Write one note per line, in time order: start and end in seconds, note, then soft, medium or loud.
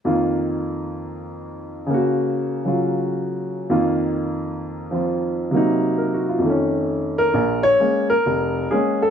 0.05 1.88 F2 soft
0.05 1.88 D#3 soft
0.05 1.88 A#3 soft
0.05 1.88 F4 soft
1.86 2.63 C#3 soft
1.86 3.69 A#3 soft
1.94 3.73 F#4 medium
2.65 3.71 C#3 soft
2.65 3.71 F#3 soft
2.65 3.70 F4 soft
3.70 5.52 F2 soft
3.70 5.52 D#3 soft
3.70 5.53 A#3 soft
3.70 4.93 F4 medium
4.91 5.52 F3 soft
4.91 5.53 C4 soft
4.91 5.54 F4 soft
5.51 6.43 C3 soft
5.51 6.44 F#3 soft
5.51 6.44 A#3 soft
5.56 6.46 D#4 medium
5.98 6.26 A#4 soft
6.14 6.37 F#4 soft
6.29 6.52 F4 soft
6.38 7.32 F2 soft
6.38 7.34 D#3 soft
6.46 7.36 A3 soft
6.50 7.38 C#4 soft
7.18 7.61 A#4 medium
7.34 7.74 A#1 medium
7.63 8.06 C#5 medium
7.80 8.12 G#3 soft
7.80 8.12 A#3 soft
7.80 8.12 C#4 soft
8.10 8.73 A#4 medium
8.26 8.65 F1 medium
8.71 9.03 G#3 soft
8.71 9.04 A#3 soft
8.71 9.04 C#4 soft
8.71 9.02 G#4 medium
9.02 9.10 A4 medium